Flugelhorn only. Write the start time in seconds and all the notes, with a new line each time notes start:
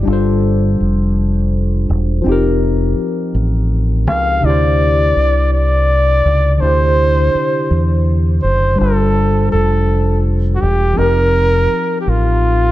4.09 F5
4.45 D5
5.53 D5
6.55 D5
6.60 C5
8.42 C5
8.79 A4
9.52 A4
10.55 F#4
10.61 G4
10.98 A#4
12.01 G4
12.09 F4